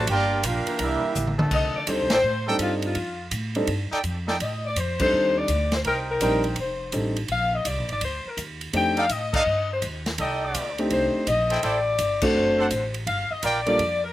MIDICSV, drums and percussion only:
0, 0, Header, 1, 2, 480
1, 0, Start_track
1, 0, Tempo, 361011
1, 97, Time_signature, 4, 2, 24, 8
1, 18785, End_track
2, 0, Start_track
2, 0, Title_t, "Drums"
2, 96, Note_on_c, 9, 51, 79
2, 97, Note_on_c, 9, 36, 30
2, 229, Note_off_c, 9, 51, 0
2, 230, Note_off_c, 9, 36, 0
2, 577, Note_on_c, 9, 36, 25
2, 577, Note_on_c, 9, 44, 79
2, 577, Note_on_c, 9, 51, 89
2, 710, Note_off_c, 9, 36, 0
2, 710, Note_off_c, 9, 44, 0
2, 710, Note_off_c, 9, 51, 0
2, 886, Note_on_c, 9, 51, 61
2, 1019, Note_off_c, 9, 51, 0
2, 1048, Note_on_c, 9, 51, 74
2, 1053, Note_on_c, 9, 36, 19
2, 1181, Note_off_c, 9, 51, 0
2, 1186, Note_off_c, 9, 36, 0
2, 1531, Note_on_c, 9, 44, 57
2, 1533, Note_on_c, 9, 47, 55
2, 1664, Note_off_c, 9, 44, 0
2, 1666, Note_off_c, 9, 47, 0
2, 1692, Note_on_c, 9, 47, 64
2, 1825, Note_off_c, 9, 47, 0
2, 1848, Note_on_c, 9, 47, 106
2, 1981, Note_off_c, 9, 47, 0
2, 2007, Note_on_c, 9, 49, 75
2, 2009, Note_on_c, 9, 36, 70
2, 2140, Note_off_c, 9, 49, 0
2, 2142, Note_off_c, 9, 36, 0
2, 2485, Note_on_c, 9, 44, 60
2, 2485, Note_on_c, 9, 51, 83
2, 2489, Note_on_c, 9, 36, 25
2, 2618, Note_off_c, 9, 44, 0
2, 2618, Note_off_c, 9, 51, 0
2, 2622, Note_off_c, 9, 36, 0
2, 2791, Note_on_c, 9, 51, 70
2, 2793, Note_on_c, 9, 38, 85
2, 2924, Note_off_c, 9, 51, 0
2, 2926, Note_off_c, 9, 38, 0
2, 3443, Note_on_c, 9, 44, 50
2, 3443, Note_on_c, 9, 51, 72
2, 3447, Note_on_c, 9, 36, 17
2, 3576, Note_off_c, 9, 44, 0
2, 3576, Note_off_c, 9, 51, 0
2, 3580, Note_off_c, 9, 36, 0
2, 3754, Note_on_c, 9, 51, 52
2, 3887, Note_off_c, 9, 51, 0
2, 3920, Note_on_c, 9, 51, 63
2, 3927, Note_on_c, 9, 36, 23
2, 4053, Note_off_c, 9, 51, 0
2, 4060, Note_off_c, 9, 36, 0
2, 4404, Note_on_c, 9, 44, 62
2, 4404, Note_on_c, 9, 51, 80
2, 4407, Note_on_c, 9, 36, 26
2, 4537, Note_off_c, 9, 44, 0
2, 4537, Note_off_c, 9, 51, 0
2, 4540, Note_off_c, 9, 36, 0
2, 4719, Note_on_c, 9, 51, 49
2, 4852, Note_off_c, 9, 51, 0
2, 4883, Note_on_c, 9, 51, 66
2, 4888, Note_on_c, 9, 36, 25
2, 5016, Note_off_c, 9, 51, 0
2, 5021, Note_off_c, 9, 36, 0
2, 5367, Note_on_c, 9, 44, 57
2, 5367, Note_on_c, 9, 51, 58
2, 5371, Note_on_c, 9, 36, 17
2, 5500, Note_off_c, 9, 44, 0
2, 5500, Note_off_c, 9, 51, 0
2, 5504, Note_off_c, 9, 36, 0
2, 5692, Note_on_c, 9, 38, 49
2, 5825, Note_off_c, 9, 38, 0
2, 5853, Note_on_c, 9, 36, 21
2, 5853, Note_on_c, 9, 51, 66
2, 5986, Note_off_c, 9, 36, 0
2, 5986, Note_off_c, 9, 51, 0
2, 6332, Note_on_c, 9, 36, 21
2, 6332, Note_on_c, 9, 44, 65
2, 6332, Note_on_c, 9, 51, 78
2, 6465, Note_off_c, 9, 36, 0
2, 6465, Note_off_c, 9, 44, 0
2, 6465, Note_off_c, 9, 51, 0
2, 6640, Note_on_c, 9, 49, 84
2, 6646, Note_on_c, 9, 36, 81
2, 6773, Note_off_c, 9, 49, 0
2, 6779, Note_off_c, 9, 36, 0
2, 7287, Note_on_c, 9, 44, 57
2, 7287, Note_on_c, 9, 51, 68
2, 7295, Note_on_c, 9, 36, 17
2, 7420, Note_off_c, 9, 44, 0
2, 7420, Note_off_c, 9, 51, 0
2, 7428, Note_off_c, 9, 36, 0
2, 7601, Note_on_c, 9, 51, 51
2, 7604, Note_on_c, 9, 38, 55
2, 7734, Note_off_c, 9, 51, 0
2, 7737, Note_off_c, 9, 38, 0
2, 7771, Note_on_c, 9, 51, 62
2, 7775, Note_on_c, 9, 36, 18
2, 7904, Note_off_c, 9, 51, 0
2, 7908, Note_off_c, 9, 36, 0
2, 8251, Note_on_c, 9, 44, 68
2, 8251, Note_on_c, 9, 51, 78
2, 8257, Note_on_c, 9, 36, 22
2, 8384, Note_off_c, 9, 44, 0
2, 8384, Note_off_c, 9, 51, 0
2, 8390, Note_off_c, 9, 36, 0
2, 8560, Note_on_c, 9, 51, 45
2, 8693, Note_off_c, 9, 51, 0
2, 8719, Note_on_c, 9, 51, 64
2, 8733, Note_on_c, 9, 36, 22
2, 8852, Note_off_c, 9, 51, 0
2, 8866, Note_off_c, 9, 36, 0
2, 9203, Note_on_c, 9, 44, 54
2, 9203, Note_on_c, 9, 51, 69
2, 9213, Note_on_c, 9, 36, 17
2, 9336, Note_off_c, 9, 44, 0
2, 9336, Note_off_c, 9, 51, 0
2, 9346, Note_off_c, 9, 36, 0
2, 9526, Note_on_c, 9, 51, 55
2, 9659, Note_off_c, 9, 51, 0
2, 9683, Note_on_c, 9, 51, 64
2, 9693, Note_on_c, 9, 36, 22
2, 9816, Note_off_c, 9, 51, 0
2, 9826, Note_off_c, 9, 36, 0
2, 10172, Note_on_c, 9, 44, 66
2, 10172, Note_on_c, 9, 51, 80
2, 10173, Note_on_c, 9, 36, 26
2, 10305, Note_off_c, 9, 44, 0
2, 10305, Note_off_c, 9, 51, 0
2, 10306, Note_off_c, 9, 36, 0
2, 10488, Note_on_c, 9, 51, 46
2, 10621, Note_off_c, 9, 51, 0
2, 10650, Note_on_c, 9, 51, 70
2, 10653, Note_on_c, 9, 36, 20
2, 10783, Note_off_c, 9, 51, 0
2, 10786, Note_off_c, 9, 36, 0
2, 11132, Note_on_c, 9, 36, 18
2, 11134, Note_on_c, 9, 44, 56
2, 11134, Note_on_c, 9, 51, 56
2, 11265, Note_off_c, 9, 36, 0
2, 11267, Note_off_c, 9, 44, 0
2, 11267, Note_off_c, 9, 51, 0
2, 11448, Note_on_c, 9, 51, 52
2, 11581, Note_off_c, 9, 51, 0
2, 11612, Note_on_c, 9, 51, 71
2, 11613, Note_on_c, 9, 36, 19
2, 11745, Note_off_c, 9, 51, 0
2, 11746, Note_off_c, 9, 36, 0
2, 11924, Note_on_c, 9, 51, 51
2, 12057, Note_off_c, 9, 51, 0
2, 12092, Note_on_c, 9, 44, 62
2, 12092, Note_on_c, 9, 51, 72
2, 12095, Note_on_c, 9, 36, 21
2, 12224, Note_off_c, 9, 44, 0
2, 12224, Note_off_c, 9, 51, 0
2, 12228, Note_off_c, 9, 36, 0
2, 12411, Note_on_c, 9, 36, 89
2, 12414, Note_on_c, 9, 49, 75
2, 12544, Note_off_c, 9, 36, 0
2, 12547, Note_off_c, 9, 49, 0
2, 13055, Note_on_c, 9, 44, 48
2, 13055, Note_on_c, 9, 51, 65
2, 13059, Note_on_c, 9, 36, 22
2, 13188, Note_off_c, 9, 44, 0
2, 13188, Note_off_c, 9, 51, 0
2, 13192, Note_off_c, 9, 36, 0
2, 13376, Note_on_c, 9, 51, 53
2, 13379, Note_on_c, 9, 38, 55
2, 13509, Note_off_c, 9, 51, 0
2, 13512, Note_off_c, 9, 38, 0
2, 13537, Note_on_c, 9, 51, 65
2, 13542, Note_on_c, 9, 36, 25
2, 13669, Note_off_c, 9, 51, 0
2, 13675, Note_off_c, 9, 36, 0
2, 14020, Note_on_c, 9, 44, 60
2, 14020, Note_on_c, 9, 51, 80
2, 14024, Note_on_c, 9, 36, 23
2, 14153, Note_off_c, 9, 44, 0
2, 14153, Note_off_c, 9, 51, 0
2, 14157, Note_off_c, 9, 36, 0
2, 14336, Note_on_c, 9, 51, 52
2, 14469, Note_off_c, 9, 51, 0
2, 14498, Note_on_c, 9, 51, 61
2, 14504, Note_on_c, 9, 36, 22
2, 14631, Note_off_c, 9, 51, 0
2, 14637, Note_off_c, 9, 36, 0
2, 14982, Note_on_c, 9, 44, 56
2, 14982, Note_on_c, 9, 51, 70
2, 14983, Note_on_c, 9, 36, 24
2, 15115, Note_off_c, 9, 44, 0
2, 15115, Note_off_c, 9, 51, 0
2, 15116, Note_off_c, 9, 36, 0
2, 15292, Note_on_c, 9, 51, 50
2, 15425, Note_off_c, 9, 51, 0
2, 15461, Note_on_c, 9, 51, 65
2, 15463, Note_on_c, 9, 36, 21
2, 15594, Note_off_c, 9, 51, 0
2, 15596, Note_off_c, 9, 36, 0
2, 15935, Note_on_c, 9, 44, 69
2, 15935, Note_on_c, 9, 51, 75
2, 15939, Note_on_c, 9, 36, 25
2, 16068, Note_off_c, 9, 44, 0
2, 16068, Note_off_c, 9, 51, 0
2, 16072, Note_off_c, 9, 36, 0
2, 16242, Note_on_c, 9, 49, 89
2, 16250, Note_on_c, 9, 36, 88
2, 16375, Note_off_c, 9, 49, 0
2, 16383, Note_off_c, 9, 36, 0
2, 16892, Note_on_c, 9, 44, 55
2, 16892, Note_on_c, 9, 51, 66
2, 16895, Note_on_c, 9, 36, 21
2, 17025, Note_off_c, 9, 44, 0
2, 17025, Note_off_c, 9, 51, 0
2, 17028, Note_off_c, 9, 36, 0
2, 17208, Note_on_c, 9, 51, 51
2, 17341, Note_off_c, 9, 51, 0
2, 17375, Note_on_c, 9, 36, 19
2, 17377, Note_on_c, 9, 51, 63
2, 17508, Note_off_c, 9, 36, 0
2, 17510, Note_off_c, 9, 51, 0
2, 17851, Note_on_c, 9, 44, 64
2, 17851, Note_on_c, 9, 51, 81
2, 17857, Note_on_c, 9, 36, 21
2, 17984, Note_off_c, 9, 44, 0
2, 17984, Note_off_c, 9, 51, 0
2, 17990, Note_off_c, 9, 36, 0
2, 18169, Note_on_c, 9, 51, 51
2, 18302, Note_off_c, 9, 51, 0
2, 18336, Note_on_c, 9, 51, 62
2, 18338, Note_on_c, 9, 36, 26
2, 18469, Note_off_c, 9, 51, 0
2, 18471, Note_off_c, 9, 36, 0
2, 18785, End_track
0, 0, End_of_file